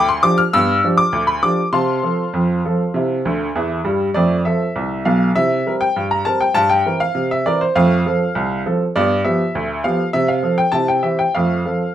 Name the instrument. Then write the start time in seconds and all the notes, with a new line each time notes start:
upright piano
Already playing: D2
0.09 C6
0.23 F3 D4 G4 D6
0.38 F6
0.53 G2 B3 E6
0.84 F3 D4 G4
0.98 D6
1.13 D2
1.27 B5
1.43 F3 D4 G4 D6
1.73 C3 F5 A5 C6
2.03 F3 C4 A4
2.33 F2
2.65 F3 C4 A4
2.94 C3 E4
3.25 D2 D3
3.56 E2 E3
3.84 G2 G3
4.14 F2 A3 D5
4.45 F3 C4 A4 E5
4.76 C2
5.05 B1 B2 F5
5.36 C3 E4 E5
5.66 G3 C4 A#4
5.81 G5
5.96 G2
6.11 A#5
6.25 G3 C4 A#4 A5
6.41 G5
6.55 G2 A5
6.70 G5
6.85 E3 C4 A#4
7.00 F5
7.15 C3
7.31 E5
7.46 E3 C4 A#4 D5
7.61 C5
7.76 F2 A3 F5
8.05 F3 C4 A4
8.35 C2
8.66 F3 C4 A4
8.96 G2 B3 D5
9.25 F3 B3 G4 E5
9.55 D2
9.84 F3 B3 G4 F5
10.13 C3 E5
10.28 F5
10.43 F3 C4 A4
10.58 G5
10.72 C3 E4 A5
10.88 G5
11.03 E3 C4 G4 E5
11.19 G5
11.35 F2 A3 F5
11.65 F3 C4 A4